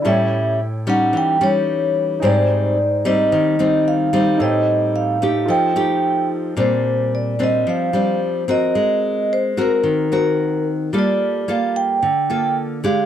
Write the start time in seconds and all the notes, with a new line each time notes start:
0.02 A2 G3 C#4 E4 A4
0.06 C#5 E5 G5
0.87 G3 C#4 D#4 F#5
1.13 E3
1.17 G5
1.41 G3 C#4 D#4 C#5
2.20 G#2 G3 C4 D#4 G#5
2.24 D#4 C5 D5 G5
3.05 G3 C4 D#4 D#5
3.32 D#3
3.59 G3 C4 D#4
3.88 F5
4.13 G3 C4 D#4
4.37 A2 D#4 A4
4.41 C5 D#5 G5
4.96 F5
5.22 A3 D#4 G4
5.46 F3 F4 A4
5.50 D#5 G5
5.76 A3 D#4 G4
6.57 A#2 G3 C4 D4 C5
7.15 D5
7.39 G3 C4 D4
7.44 D#5
7.67 F3 F5
7.93 G3 C4 D4
8.48 C4 F#4 A#4 D#5
8.75 G#3
9.33 C5
9.57 C4 F#4 A#4
9.62 A#4
9.83 D#3
10.12 C4 F#4 A#4
10.93 G3 A#3 F4 A4
10.99 D5
11.48 A#3 F4 A4 F5
11.76 G5
12.03 D3
12.30 A#3 F4 A4
12.84 G#3 D4 G4 F5